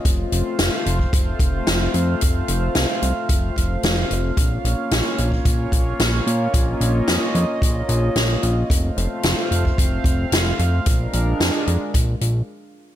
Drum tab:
HH |x-x-x-x-x-x-x-x-|x-x-x-x-x-x-x-x-|x-x-x-x-x-x-x-x-|x-x-x-x-x-x-x-x-|
SD |----o-------o---|----o-------o---|----o-------o---|----o-------o---|
BD |o------oo-o-----|o-------o-o-----|o------oo-o-----|o-------o-------|

HH |x-x-x-x-x-x-x-x-|x-x-x-x-x-x-----|
SD |----o-------o---|----o-----------|
BD |o------oo-o-----|o-------o-------|